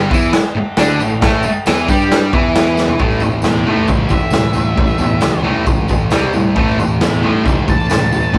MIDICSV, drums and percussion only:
0, 0, Header, 1, 2, 480
1, 0, Start_track
1, 0, Tempo, 444774
1, 1312, Time_signature, 4, 2, 24, 8
1, 9046, End_track
2, 0, Start_track
2, 0, Title_t, "Drums"
2, 120, Note_on_c, 9, 36, 110
2, 145, Note_on_c, 9, 54, 81
2, 227, Note_off_c, 9, 36, 0
2, 253, Note_off_c, 9, 54, 0
2, 354, Note_on_c, 9, 49, 60
2, 359, Note_on_c, 9, 38, 109
2, 369, Note_on_c, 9, 54, 77
2, 462, Note_off_c, 9, 49, 0
2, 467, Note_off_c, 9, 38, 0
2, 477, Note_off_c, 9, 54, 0
2, 827, Note_on_c, 9, 49, 68
2, 832, Note_on_c, 9, 38, 121
2, 859, Note_on_c, 9, 54, 89
2, 935, Note_off_c, 9, 49, 0
2, 940, Note_off_c, 9, 38, 0
2, 967, Note_off_c, 9, 54, 0
2, 1082, Note_on_c, 9, 54, 75
2, 1190, Note_off_c, 9, 54, 0
2, 1308, Note_on_c, 9, 54, 27
2, 1315, Note_on_c, 9, 49, 61
2, 1317, Note_on_c, 9, 36, 109
2, 1320, Note_on_c, 9, 38, 120
2, 1416, Note_off_c, 9, 54, 0
2, 1423, Note_off_c, 9, 49, 0
2, 1425, Note_off_c, 9, 36, 0
2, 1428, Note_off_c, 9, 38, 0
2, 1539, Note_on_c, 9, 54, 83
2, 1647, Note_off_c, 9, 54, 0
2, 1790, Note_on_c, 9, 54, 102
2, 1799, Note_on_c, 9, 49, 63
2, 1803, Note_on_c, 9, 38, 116
2, 1898, Note_off_c, 9, 54, 0
2, 1907, Note_off_c, 9, 49, 0
2, 1911, Note_off_c, 9, 38, 0
2, 2034, Note_on_c, 9, 36, 102
2, 2036, Note_on_c, 9, 54, 89
2, 2142, Note_off_c, 9, 36, 0
2, 2144, Note_off_c, 9, 54, 0
2, 2280, Note_on_c, 9, 49, 53
2, 2285, Note_on_c, 9, 38, 117
2, 2285, Note_on_c, 9, 54, 79
2, 2388, Note_off_c, 9, 49, 0
2, 2392, Note_off_c, 9, 38, 0
2, 2393, Note_off_c, 9, 54, 0
2, 2516, Note_on_c, 9, 36, 114
2, 2624, Note_off_c, 9, 36, 0
2, 2755, Note_on_c, 9, 49, 59
2, 2759, Note_on_c, 9, 38, 121
2, 2762, Note_on_c, 9, 54, 98
2, 2863, Note_off_c, 9, 49, 0
2, 2867, Note_off_c, 9, 38, 0
2, 2870, Note_off_c, 9, 54, 0
2, 2992, Note_on_c, 9, 54, 83
2, 2999, Note_on_c, 9, 38, 67
2, 3100, Note_off_c, 9, 54, 0
2, 3107, Note_off_c, 9, 38, 0
2, 3109, Note_on_c, 9, 43, 80
2, 3217, Note_off_c, 9, 43, 0
2, 3229, Note_on_c, 9, 43, 81
2, 3235, Note_on_c, 9, 36, 105
2, 3337, Note_off_c, 9, 43, 0
2, 3342, Note_off_c, 9, 36, 0
2, 3349, Note_on_c, 9, 54, 28
2, 3454, Note_off_c, 9, 54, 0
2, 3454, Note_on_c, 9, 54, 71
2, 3471, Note_on_c, 9, 43, 67
2, 3562, Note_off_c, 9, 54, 0
2, 3579, Note_off_c, 9, 43, 0
2, 3688, Note_on_c, 9, 54, 95
2, 3710, Note_on_c, 9, 43, 82
2, 3715, Note_on_c, 9, 38, 100
2, 3796, Note_off_c, 9, 54, 0
2, 3818, Note_off_c, 9, 43, 0
2, 3823, Note_off_c, 9, 38, 0
2, 3959, Note_on_c, 9, 43, 65
2, 4067, Note_off_c, 9, 43, 0
2, 4182, Note_on_c, 9, 54, 78
2, 4190, Note_on_c, 9, 43, 80
2, 4192, Note_on_c, 9, 36, 100
2, 4290, Note_off_c, 9, 54, 0
2, 4298, Note_off_c, 9, 43, 0
2, 4300, Note_off_c, 9, 36, 0
2, 4412, Note_on_c, 9, 54, 73
2, 4430, Note_on_c, 9, 43, 70
2, 4432, Note_on_c, 9, 36, 91
2, 4519, Note_off_c, 9, 54, 0
2, 4538, Note_off_c, 9, 43, 0
2, 4538, Note_on_c, 9, 54, 26
2, 4540, Note_off_c, 9, 36, 0
2, 4645, Note_off_c, 9, 54, 0
2, 4645, Note_on_c, 9, 54, 90
2, 4674, Note_on_c, 9, 43, 85
2, 4679, Note_on_c, 9, 38, 115
2, 4753, Note_off_c, 9, 54, 0
2, 4782, Note_off_c, 9, 43, 0
2, 4787, Note_off_c, 9, 38, 0
2, 4887, Note_on_c, 9, 54, 71
2, 4913, Note_on_c, 9, 43, 61
2, 4995, Note_off_c, 9, 54, 0
2, 5021, Note_off_c, 9, 43, 0
2, 5153, Note_on_c, 9, 36, 119
2, 5155, Note_on_c, 9, 43, 85
2, 5253, Note_on_c, 9, 54, 29
2, 5261, Note_off_c, 9, 36, 0
2, 5263, Note_off_c, 9, 43, 0
2, 5361, Note_off_c, 9, 54, 0
2, 5374, Note_on_c, 9, 54, 69
2, 5394, Note_on_c, 9, 43, 61
2, 5482, Note_off_c, 9, 54, 0
2, 5502, Note_off_c, 9, 43, 0
2, 5619, Note_on_c, 9, 54, 92
2, 5628, Note_on_c, 9, 43, 76
2, 5632, Note_on_c, 9, 38, 120
2, 5727, Note_off_c, 9, 54, 0
2, 5736, Note_off_c, 9, 43, 0
2, 5740, Note_off_c, 9, 38, 0
2, 5875, Note_on_c, 9, 43, 68
2, 5983, Note_off_c, 9, 43, 0
2, 6111, Note_on_c, 9, 54, 70
2, 6117, Note_on_c, 9, 36, 105
2, 6119, Note_on_c, 9, 43, 67
2, 6219, Note_off_c, 9, 54, 0
2, 6225, Note_off_c, 9, 36, 0
2, 6227, Note_off_c, 9, 43, 0
2, 6347, Note_on_c, 9, 54, 71
2, 6360, Note_on_c, 9, 36, 84
2, 6366, Note_on_c, 9, 43, 60
2, 6455, Note_off_c, 9, 54, 0
2, 6467, Note_off_c, 9, 36, 0
2, 6474, Note_off_c, 9, 43, 0
2, 6476, Note_on_c, 9, 54, 27
2, 6584, Note_off_c, 9, 54, 0
2, 6588, Note_on_c, 9, 54, 85
2, 6597, Note_on_c, 9, 43, 87
2, 6602, Note_on_c, 9, 38, 114
2, 6695, Note_off_c, 9, 54, 0
2, 6705, Note_off_c, 9, 43, 0
2, 6710, Note_off_c, 9, 38, 0
2, 6832, Note_on_c, 9, 54, 65
2, 6837, Note_on_c, 9, 43, 59
2, 6940, Note_off_c, 9, 54, 0
2, 6945, Note_off_c, 9, 43, 0
2, 7076, Note_on_c, 9, 43, 81
2, 7080, Note_on_c, 9, 36, 108
2, 7184, Note_off_c, 9, 43, 0
2, 7188, Note_off_c, 9, 36, 0
2, 7213, Note_on_c, 9, 54, 22
2, 7321, Note_off_c, 9, 54, 0
2, 7326, Note_on_c, 9, 43, 60
2, 7332, Note_on_c, 9, 54, 64
2, 7434, Note_off_c, 9, 43, 0
2, 7440, Note_off_c, 9, 54, 0
2, 7564, Note_on_c, 9, 43, 88
2, 7568, Note_on_c, 9, 38, 116
2, 7586, Note_on_c, 9, 54, 87
2, 7671, Note_off_c, 9, 43, 0
2, 7676, Note_off_c, 9, 38, 0
2, 7694, Note_off_c, 9, 54, 0
2, 7807, Note_on_c, 9, 43, 68
2, 7915, Note_off_c, 9, 43, 0
2, 8048, Note_on_c, 9, 36, 106
2, 8054, Note_on_c, 9, 43, 85
2, 8069, Note_on_c, 9, 54, 81
2, 8156, Note_off_c, 9, 36, 0
2, 8162, Note_off_c, 9, 43, 0
2, 8177, Note_off_c, 9, 54, 0
2, 8289, Note_on_c, 9, 36, 87
2, 8292, Note_on_c, 9, 54, 81
2, 8294, Note_on_c, 9, 43, 71
2, 8397, Note_off_c, 9, 36, 0
2, 8400, Note_off_c, 9, 54, 0
2, 8402, Note_off_c, 9, 43, 0
2, 8416, Note_on_c, 9, 54, 30
2, 8521, Note_off_c, 9, 54, 0
2, 8521, Note_on_c, 9, 54, 105
2, 8533, Note_on_c, 9, 43, 91
2, 8537, Note_on_c, 9, 38, 110
2, 8629, Note_off_c, 9, 54, 0
2, 8641, Note_off_c, 9, 43, 0
2, 8645, Note_off_c, 9, 38, 0
2, 8767, Note_on_c, 9, 54, 85
2, 8770, Note_on_c, 9, 43, 59
2, 8875, Note_off_c, 9, 54, 0
2, 8878, Note_off_c, 9, 43, 0
2, 8999, Note_on_c, 9, 43, 82
2, 9003, Note_on_c, 9, 36, 101
2, 9046, Note_off_c, 9, 36, 0
2, 9046, Note_off_c, 9, 43, 0
2, 9046, End_track
0, 0, End_of_file